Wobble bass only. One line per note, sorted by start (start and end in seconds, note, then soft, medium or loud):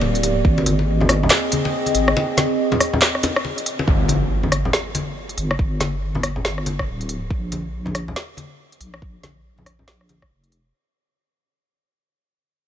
0.02 0.44 D1 medium
0.45 1.29 G#1 loud
1.95 2.15 G#1 medium
3.88 4.72 G1 medium
5.38 5.58 G1 medium
5.59 6.44 G1 loud
6.45 6.87 G1 medium
6.88 7.29 D1 medium
7.30 8.15 A#1 medium
8.81 9.01 A#1 medium
9.02 9.87 A#1 medium
9.88 10.29 A#1 medium
10.31 10.72 F1 medium